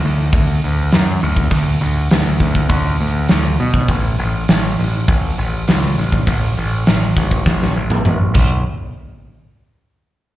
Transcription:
0.03 D2, open hi-hat
0.32 D2, kick, open hi-hat
0.62 D2, open hi-hat
0.92 F#2, snare, open hi-hat
1.22 D2, open hi-hat
1.36 kick
1.51 D2, kick, open hi-hat
1.81 D2, open hi-hat
2.10 D2, snare, open hi-hat
2.40 D2, kick, open hi-hat
2.55 kick
2.69 D2, kick, open hi-hat
2.99 D2, open hi-hat
3.28 D2, snare, open hi-hat
3.59 B2, open hi-hat
3.74 kick
3.88 A1, kick, open hi-hat
4.17 A1, open hi-hat
4.48 A1, snare, open hi-hat
4.79 A1, open hi-hat
5.08 A1, kick, open hi-hat
5.38 A1, open hi-hat
5.68 C#2, snare, open hi-hat
5.98 A1, open hi-hat
6.12 kick
6.27 A1, kick, open hi-hat
6.57 A1, open hi-hat
6.86 A1, snare, open hi-hat
7.16 A1, kick, open hi-hat
7.31 kick
7.46 A1, kick, snare
7.62 snare
7.76 A1
7.90 high tom
8.05 A1, mid tom
8.34 B1, kick, crash

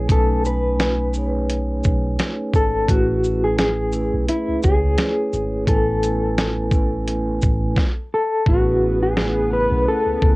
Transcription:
Already playing: A3 C#4 E4 G#4 B4 C#5 G#5
0.08 B1 A3 C#4 D#4 A4 B4 G#5, kick, closed hi-hat
0.45 B4, shaker
0.80 snare, closed hi-hat
1.13 A3 C#4 D#4 G#4, shaker
1.17 C#5
1.50 closed hi-hat
1.84 B1, kick, shaker
2.19 snare, closed hi-hat
2.53 G#1 A4, kick, shaker
2.88 A1 A3 C#4 E4 F#4 G#4, kick, closed hi-hat
2.92 B4
3.24 shaker
3.44 G#4
3.59 G#4, snare, closed hi-hat
3.92 A3 C#4 E4 G#4 B4, shaker
4.13 B1
4.28 E4, closed hi-hat
4.48 C#2
4.62 C#2 A3 C#4 E4 G#4 C#5, kick, shaker
4.98 snare, closed hi-hat
5.33 G#1, shaker
5.66 A1 A3 B3 E4 A4 G#5, kick, closed hi-hat
5.70 C#4 B4
6.03 closed hi-hat, shaker
6.38 snare, closed hi-hat
6.71 A3 C#4 E4 G#5, kick, shaker
6.75 B4
7.08 closed hi-hat
7.42 A1, kick, shaker
7.76 kick, snare
8.14 A4
8.46 A1 C#3 A3 B3 E4 F#4 G#4, kick
8.50 C#4 B4
9.03 G#4
9.17 snare
9.50 A3 C#4 E4 G#4 B4
9.54 A#4
9.60 B4
9.71 B1
9.88 A4
10.06 C#2
10.20 C#2 A3 C#4 E4 B4 G#5, kick

